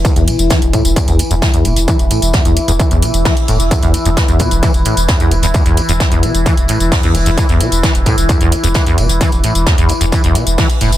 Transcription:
<<
  \new Staff \with { instrumentName = "Synth drone" } { \time 4/4 \key a \dorian \tempo 4 = 131 <e e'>1~ | <e e'>1~ | <e e'>1~ | <e e'>1~ |
<e e'>1~ | <e e'>1 | }
  \new Staff \with { instrumentName = "Acid bass" } { \clef bass \time 4/4 \key a \dorian e16 e,16 b,16 r16 e16 r16 a,16 r16 e,16 e,16 d,16 e,16 e16 e,16 b,16 r16 | e16 r16 a,16 r16 e,16 e,16 d,16 e,16 e16 e,16 b,16 r16 e16 r16 a,16 r16 | e,16 e,16 d,16 e,16 e16 e,16 b,16 r16 e16 r16 a,16 r16 e,16 e,16 d,16 e,16 | e,16 e,16 d,16 e,16 e16 e,16 b,16 r16 e16 r16 a,16 r16 e,16 e,16 d,16 e,16 |
e16 e,16 b,16 r16 e16 r16 a,16 r16 e,16 e,16 d,16 e,16 e16 e,16 b,16 r16 | e16 r16 a,16 r16 e,16 e,16 d,16 e,16 e16 e,16 b,16 r16 e16 r16 a,16 r16 | }
  \new Staff \with { instrumentName = "Sub bass" } { \clef bass \time 4/4 \key a \dorian r16 e,,16 r16 e,,16 r16 e,,16 r16 e,,16 r16 e,,16 r16 e,,16 r8 e,,16 e,,16 | r16 e,,16 r16 e,,16 r16 e,,16 r16 e,,16 r16 e,,16 r16 e,,16 r8 e,,16 e,,16 | r16 e,,16 r16 e,,16 r16 e,,16 r16 e,,16 r16 e,,16 r16 e,,16 r8 e,,16 e,,16 | r16 e,,16 r16 e,,16 r16 e,,16 r16 e,,16 r16 e,,16 r16 e,,16 r8 e,,16 e,,16 |
r16 e,,16 r16 e,,16 r16 e,,16 r16 e,,16 r16 e,,16 r16 e,,16 r8 e,,16 e,,16 | r16 e,,16 r16 e,,16 r16 e,,16 r16 e,,16 r16 e,,16 r16 e,,16 r8 e,,16 e,,16 | }
  \new DrumStaff \with { instrumentName = "Drums" } \drummode { \time 4/4 <hh bd tamb>16 <hh tamb>16 <hho tamb>16 <hh tamb>16 <hh bd sn tamb>16 <hh tamb>16 <hho bd tamb>16 <hh tamb>16 <hh bd tamb>16 <hh tamb>16 <hho tamb>16 <hh tamb>16 <hh bd sn tamb>16 <hh tamb>16 <hho tamb>16 <hh tamb>16 | <hh bd tamb>16 <hh tamb>16 <hho tamb>16 <hh tamb>16 <hh bd sn tamb>16 <hh tamb>16 <hho tamb>16 <hh tamb>16 <hh bd tamb>16 <hh tamb>16 <hho tamb>16 <hh tamb>16 <hh hho bd sn tamb>16 <hh tamb>16 <hho tamb>16 <hh tamb>16 | <hh bd tamb>16 <hh tamb>16 <hho tamb>16 <hh tamb>16 <hh bd sn tamb>16 <hh tamb>16 <hho bd tamb>16 <hh tamb>16 <hh bd tamb>16 <hh tamb>16 <hho tamb>16 <hh tamb>16 <hh bd sn tamb>16 <hh tamb>16 <hho tamb>16 <hh tamb>16 | <hh bd tamb>16 <hh tamb>16 <hho tamb>16 <hh tamb>16 <hh bd sn tamb>16 <hh tamb>16 <hho tamb>16 <hh tamb>16 <hh bd tamb>16 <hh tamb>16 <hho tamb>16 <hh tamb>16 <hh hho bd sn tamb>16 <hh tamb>16 <hho tamb>16 <hh tamb>16 |
<hh bd tamb>16 <hh tamb>16 <hho tamb>16 <hh tamb>16 <hh bd sn tamb>16 <hh tamb>16 <hho bd tamb>16 <hh tamb>16 <hh bd tamb>16 <hh tamb>16 <hho tamb>16 <hh tamb>16 <hh bd sn tamb>16 <hh tamb>16 <hho tamb>16 <hh tamb>16 | <hh bd tamb>16 <hh tamb>16 <hho tamb>16 <hh tamb>16 <hh bd sn tamb>16 <hh tamb>16 <hho tamb>16 <hh tamb>16 <hh bd tamb>16 <hh tamb>16 <hho tamb>16 <hh tamb>16 <hh hho bd sn tamb>16 <hh tamb>16 <hho tamb>16 <hh tamb>16 | }
>>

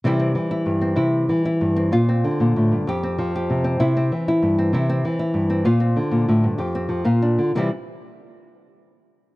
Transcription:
\new Staff \with { instrumentName = "Nylon-string guitar" } { \clef bass \time 12/8 \key c \mixolydian \tempo 4. = 128 << { <e g c' e'>8 c'4 e'4 c'8 e'4. e'4 c'8 | f'8 c'2~ c'8 g'8 c'4 g'4 c'8 | e'8 c'4 e'4 c'8 e'8 c'4 e'4 c'8 | f'8 c'2~ c'8 g'8 c'4 f'8 d'4 |
<e g c' e'>8 r1 r4. | } \\ { c4 e4 g,4 c4 e4 g,4 | bes,4 d8 bes,8 a,8 g,8 f,4 f4 c4 | c4 e4 g,4 c4 e4 g,4 | bes,4 d8 bes,8 a,8 g,8 f,4 f8 bes,4 d8 |
c8 r1 r4. | } >> }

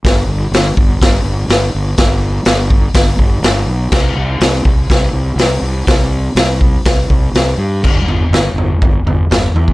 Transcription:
<<
  \new Staff \with { instrumentName = "Fingered electric bass" } { \clef bass \time 4/4 \key c \lydian \tempo 4 = 123 g,,8 g,,8 g,,8 g,,8 g,,8 g,,8 g,,8 g,,8 | g,,4 g,,4 g,,8 g,,8 g,,8 b,,8 | c,8 c,8 c,8 c,8 c,8 c,8 c,8 c,8 | c,4 c,4 c,8 c,8 c,8 g,8 |
g,,8 g,,8 g,,8 g,,8 g,,8 g,,8 g,,8 e,8 | }
  \new DrumStaff \with { instrumentName = "Drums" } \drummode { \time 4/4 <hho bd sn>4 <hho sn>8 bd8 <hho bd sn>4 <hho sn>4 | <hho bd sn>4 <hho sn>8 bd8 <hho bd sn>8 bd8 <hho sn>4 | <cymc bd sn>4 <hho sn>8 bd8 <hho bd sn>4 <hho sn>4 | <hho bd sn>4 <hho sn>8 bd8 <hho bd sn>8 bd8 <hho sn>4 |
<cymc bd tomfh>8 tomfh8 <sn tomfh>8 tomfh8 <bd tomfh>8 tomfh8 <sn tomfh>8 tomfh16 bd16 | }
>>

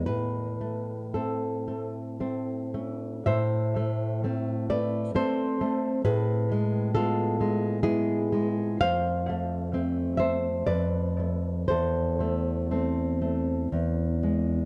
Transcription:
\new Staff \with { instrumentName = "Nylon-string guitar" } { \time 3/4 \key a \minor \tempo 4 = 61 << { b'4 a'4 r4 | <c'' e''>4. <b' d''>8 <a' c''>4 | <gis' b'>4 <f' a'>4 <e' gis'>4 | <c'' f''>4. <c'' e''>8 <b' d''>4 |
<a' c''>2 r4 | } \\ { a,8 a8 <a c'>8 a8 <a c'>8 a8 | a,8 a8 <a c'>8 a8 <a c'>8 a8 | a,8 gis8 <gis b>8 gis8 <gis b>8 gis8 | f,8 a8 <a c'>8 a8 f,8 a8 |
e,8 a8 <a c'>8 a8 e,8 gis8 | } >> }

